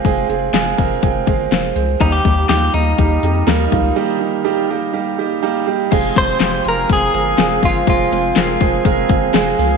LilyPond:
<<
  \new Staff \with { instrumentName = "Clean electric guitar" } { \time 4/4 \key f \dorian \tempo 4 = 123 r1 | ees'16 g'8. g'8 ees'2~ ees'8~ | ees'2. r4 | r8 c''4 bes'8 aes'4. f'8 |
f'2 r2 | }
  \new Staff \with { instrumentName = "Grand piano" } { \time 4/4 \key f \dorian << { r4. aes''8 g''8 f''8 f''8 <aes' c''>8~ | <aes' c''>8 r2. r8 | r2. bes''8 f''8 | r1 |
r1 | } \\ { <aes c' f' aes'>8 <aes c' f' aes'>8 <aes c' f' aes'>8 <aes c' f' bes'>8 <aes c' f' aes'>8 <aes c' f' aes'>8 r4 | <g bes ees' g'>8 <g bes ees' g'>8 <g bes ees' f'>8 <g bes ees' f'>8 <g bes ees' g'>8 <g bes ees' g'>8 <g bes ees' bes'>8 <g bes ees' f'>8 | <g bes ees' g'>8 <g bes ees' g'>8 <g bes ees' g'>8 <g bes ees' g'>8 <g bes ees' g'>8 <g bes ees' g'>8 <g bes ees' g'>8 <g bes ees' g'>8 | <aes c' f' aes'>8 <aes c' f' aes'>8 <aes c' f' g'>8 <aes c' f' aes'>8 <aes c' f' aes'>8 <aes c' f' bes'>8 <aes c' f' aes'>8 <aes c' f' aes'>8 |
<aes c' f' aes'>8 <aes c' f' aes'>8 <aes c' f' bes'>8 <aes c' f' aes'>8 <aes c' f' bes'>8 <aes c' f' aes'>8 <aes c' f' aes'>8 <aes c' f' aes'>8 | } >> }
  \new Staff \with { instrumentName = "Grand piano" } { \clef bass \time 4/4 \key f \dorian r1 | ees4. r2 r8 | ees4. r2 r8 | r1 |
r1 | }
  \new Staff \with { instrumentName = "Tonewheel organ" } { \time 4/4 \key f \dorian r1 | r1 | r1 | <f c' aes'>1~ |
<f c' aes'>1 | }
  \new Staff \with { instrumentName = "Analog synth bass" } { \clef bass \time 4/4 \key f \dorian f,,8 f,,8 f,,8 f,,8 f,,8 g,,8 f,,8 des,8 | ees,8 ees,8 ees,8 ees,8 ees,8 f,8 ees,8 des,8 | r1 | f,,8 f,,8 f,,8 f,,8 f,,8 g,,8 f,,8 g,,8 |
f,,8 f,,8 f,,8 f,,8 f,,8 g,,8 f,,8 des,8 | }
  \new DrumStaff \with { instrumentName = "Drums" } \drummode { \time 4/4 <hh bd>8 hh8 <hc hh sn>8 <hh bd>8 <hh bd>8 <hh bd>8 <hc hh sn>8 hh8 | <hh bd>8 <hh bd>8 <hc hh sn>8 hh8 <hh bd>8 hh8 <hc hh sn>8 <hh bd>8 | r4 r4 r4 r4 | <cymc hh bd>8 <hh bd>8 <hc hh sn>8 hh8 <hh bd>8 hh8 <hc hh sn>8 <hho bd>8 |
<hh bd>8 hh8 <hc hh sn>8 <hh bd>8 <hh bd>8 <hh bd>8 <hc hh sn>8 hho8 | }
>>